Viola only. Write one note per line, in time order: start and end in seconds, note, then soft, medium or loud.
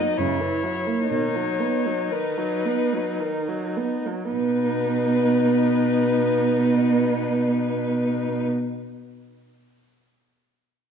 0.00 0.19 F#3 soft
0.20 0.42 C#3 soft
0.41 0.65 E3 soft
0.63 0.88 F#3 soft
0.87 1.11 A#3 soft
1.11 1.37 D#3 soft
1.35 1.61 F#3 soft
1.60 1.87 B3 soft
1.86 2.12 F#3 soft
2.11 2.39 D#3 soft
2.38 2.67 F#3 soft
2.65 2.94 B3 soft
2.93 3.22 F#3 soft
3.20 3.50 D#3 soft
3.48 3.78 F#3 soft
3.77 4.08 B3 soft
4.06 4.33 F#3 soft
4.33 8.44 B3 soft